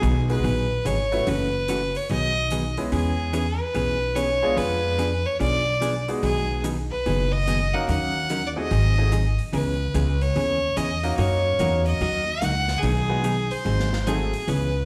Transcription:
Already playing: G#3 B3 D#4 F#4 G#4
0.02 B1 B2 D#3 F#3 B3 D#4 G#4, closed hi-hat
0.29 G#3 B3 D#4 F#4 G#4 B4, open hi-hat
0.43 A#1 B2 D#3 F#3 B3 D#4 G#4, open hi-hat
0.85 G#1 B2 D#3 F#3 B3 D#4 G#4 C#5, closed hi-hat
1.12 A3 C#4 E4 F#4 B4, open hi-hat
1.27 F#1 C#3 E3 A3 C#4 F#4 B4, open hi-hat
1.68 C#3 E3 A3 C#4 F#4, closed hi-hat
1.95 C#5, open hi-hat
2.09 B1 B2 D#3 F#3 B3 D#4 G#4 D#5, open hi-hat
2.50 B2 D#3 F#3 B3 D#4 G#4, closed hi-hat
2.77 G#3 B3 C#4 E4 G#4, open hi-hat
2.92 E2 E3 B3 C#4 G#4, open hi-hat
3.33 E3 B3 C#4 G#4, closed hi-hat
3.61 B4
3.75 B1 E3 B3 C#4 G#4, open hi-hat
4.15 E3 B3 C#4 G#4 C#5, closed hi-hat
4.42 G#3 B3 D4 F4 G#4
4.57 F2 F3 B3 D4 G#4 B4, open hi-hat
4.98 F3 B3 D4 G#4, closed hi-hat
5.26 C#5
5.40 B1 F3 B3 D4 G#4 D5, open hi-hat
5.81 F3 B3 D4 G#4, closed hi-hat
6.08 G#3 B3 D#4 F#4 G#4, open hi-hat
6.22 B1 B2 D#3 F#3 B3 D#4 G#4, open hi-hat
6.64 B2 D#3 F#3 B3 D#4 G#4, closed hi-hat
6.91 B4
7.06 F#1 B2 D#3 F#3 B3 D#4 G#4, open hi-hat
7.32 D#5
7.47 B2 D#3 F#3 B3 D#4 G#4, closed hi-hat
7.74 A#3 C#4 D#4 F#4 A#4 F#5
7.88 D#2 D#3 F#3 C#4 D#4 A#4 F#5, open hi-hat
8.29 D#3 F#3 C#4 D#4 A#4, closed hi-hat
8.47 D5
8.56 A3 C4 D#4 F#4 G#4 D#5
8.71 G#1 D#3 F#3 C4 D#4 G#4, open hi-hat
8.98 A3 C4 D#4 F#4 G#4
9.12 D#3 F#3 C4 D#4 G#4, closed hi-hat
9.38 open hi-hat
9.53 C#2 C#3 E3 B3 C#4 G#4 B4, open hi-hat
9.94 C#2 C#3 E3 B3 C#4 G#4, closed hi-hat
10.21 C#5, open hi-hat
10.36 D#2 C#3 E3 B3 C#4 G#4, open hi-hat
10.77 E2 C#3 E3 B3 C#4 G#4 D#5, closed hi-hat
11.03 A#3 C#4 D#4 F#4 A#4, open hi-hat
11.18 F#2 F#3 A#3 D#4 F#4 C#5, open hi-hat
11.59 E2 F#3 A#3 C#4 D#4 F#4 A#4, closed hi-hat
11.86 D#5, open hi-hat
12.00 D#2 F#3 A#3 D#4 F#4, open hi-hat
12.42 C#2 F#3 A#3 D#4 F#4 F#5, closed hi-hat
12.68 snare, open hi-hat
12.83 B1 B2 D#3 F#3 B3 D#4 G#4, open hi-hat
13.09 G#3 B3 D#4 F#4 G#4
13.24 B2 D#3 F#3 B3 D#4 G#4, closed hi-hat
13.51 C5, open hi-hat
13.65 G#1 D#3 F#3 C4 D#4 G#4, open hi-hat
13.79 snare
13.93 snare
14.07 D#3 F#3 A3 C4 D#4 F#4 G#4 A4, closed hi-hat
14.33 open hi-hat
14.48 C#2 C#3 E3 B3 C#4 G#4 B4, open hi-hat

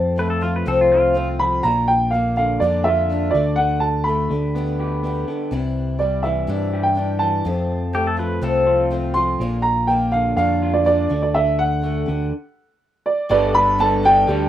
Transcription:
Already playing: F2 C3 F3 A3 C4 F4 A5
0.16 F3 A3 C4 F4 B4
0.30 A4
0.41 F3 A3 C4 F4
0.56 B4
0.66 C2 F2 C3 F3 A3 C4 F4 A4
0.81 F4
0.92 F4
1.14 F3 A3 C4 F4
1.39 F3 B5
1.63 A#1 A#2 D3 A#3 D4 F4 A#5
1.88 G5
2.11 D3 A#3 D4 F5
2.15 F4
2.36 D3 A#3 D4 F4 F5
2.60 F2 A#2 D3 A#3 D4 D5
2.64 F4
2.84 F4 E5
3.10 D3 A#3 D4 F4
3.31 F#4 D5
3.35 D2 D3 A3 D4
3.56 D3 F#5
3.80 A5
4.04 D3 B5
4.08 A3 D4 F#4
4.31 D2 D3 G3 B3 G4
4.56 D3 G3 B3 G4
4.79 G4
5.04 D3 G3 B3 G4
5.28 D3 G3 B3 G4
5.51 C2 C3 E3 G3 D4 E4
5.98 E3 G3 D4 E4 D5
6.23 E3 G3 D4 E4 E5
6.47 G2 C3 E3 G3 D4 E4
6.73 G4
6.83 G5
6.95 E3 G3 D4 E4
7.19 E3 A5
7.45 F2 C3 F3 A3 C4 F4
7.93 F3 A3 C4 F4 G4
8.07 A4
8.17 F3 A3 C4 F4 B4
8.41 C2 F2 C3 F3 A3 C4 F4 A4
8.67 F4
8.91 F3 A3 C4 F4
9.14 F3 A3 C4 F4 C6
9.40 A#1 A#2 D3 A#3 D4 F4
9.62 A#5
9.87 D3 A#3 D4 G5
9.91 F4
10.12 D3 A#3 D4 F4 F5
10.37 F2 A#2 D3 A#3 D4 F4 F5
10.62 F4
10.73 D5
10.84 D3 A#3 D4 F4 D5
11.09 D2 D3 A3 D4 F#4
11.22 D5
11.34 D3 E5
11.59 F#5
11.82 D3 A3 D4 F#4
12.06 D2 D3 G3 B3 G4
13.06 D5
13.29 G1 G3 B3 D4 G4 A4 B4 D5
13.54 B3 D4 A4 B5
13.78 G3 B3 D4 A4 A5
14.03 G3 B3 D4 A4 G5
14.27 D2 D3 G3 D4 G4 A4 D5

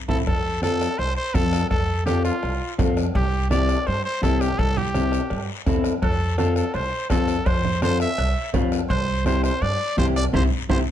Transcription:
0.08 A1 C4 E4 A4, bombo low, high conga, high timbale, long guiro
0.27 F2 A4, bombo low, bombo rim, high conga, long guiro
0.62 C4 F4 A4, bombo rim, high conga, short guiro
0.81 bombo rim, short guiro
0.98 C2 C5, bombo rim, high conga, long guiro
1.16 C5
1.34 F2 C4 F4 A4, bombo low, bombo rim, high conga, short guiro
1.53 bombo rim, short guiro
1.70 F2 A4, bombo low, bombo rim, high conga, long guiro
2.06 C4 F4 G4 A4, bombo rim, high conga, short guiro
2.25 F4, bombo rim, short guiro
2.43 C2, bombo rim, high conga, long guiro
2.78 F2 C4 F4 A4, bombo low, bombo rim, high conga, low conga, short guiro
2.97 bombo rim, short guiro
3.15 C2 G4, bombo low, bombo rim, high conga, long guiro
3.50 C4 E4 G4 D5, bombo rim, high conga, short guiro
3.69 bombo rim, short guiro
3.87 G2 C5, bombo rim, high conga, long guiro
4.05 C5
4.22 C2 C4 E4 G4 A4, bombo low, bombo rim, high conga, short guiro
4.41 G4, bombo rim, short guiro
4.59 C2 A4, bombo low, bombo rim, high conga, long guiro
4.77 G4, low conga
4.94 C4 E4 G4, bombo rim, high conga, short guiro
5.12 bombo rim, short guiro
5.30 G2, bombo rim, high conga, long guiro
5.66 E2 C4 E4 A4, bombo low, bombo rim, high conga, low conga, short guiro
5.84 bombo rim, short guiro
6.02 F2 A4, bombo low, bombo rim, cowbell, high conga, long guiro
6.38 C4 F4 A4, bombo rim, cowbell, high conga, short guiro
6.56 A4, bombo rim, short guiro
6.74 C2 C5, bombo rim, cowbell, high conga, long guiro
7.10 F2 C4 F4 A4 C5, bombo low, bombo rim, cowbell, high conga, low timbale, short guiro
7.28 bombo rim, short guiro
7.46 F2 C5, bombo low, bombo rim, cowbell, high conga, long guiro
7.64 low conga
7.82 C4 F4 A4 C5, bombo rim, cowbell, high conga, short guiro
8.00 E5, bombo rim, short guiro
8.18 C2, bombo rim, cowbell, high conga, long guiro
8.54 F2 C4 F4 B4, bombo low, bombo rim, cowbell, high conga, low conga, low timbale, short guiro
8.72 bombo rim, short guiro
8.90 C2 C5, bombo low, bombo rim, cowbell, long guiro
9.26 C4 E4 G4 C5, bombo rim, cowbell, high conga, short guiro
9.44 C5, bombo rim, short guiro
9.62 G2 D5, bombo rim, cowbell, high conga, long guiro
9.97 C2 C4 E4 G4 C5, bombo low, bombo rim, cowbell, high conga, low timbale, short guiro
10.16 D5, bombo rim, short guiro
10.33 C2 C4 E4 G4 C5, bombo low, high conga, high timbale, long guiro
10.69 C2 C4 E4 G4 C5, bombo low, high conga, high timbale, long guiro

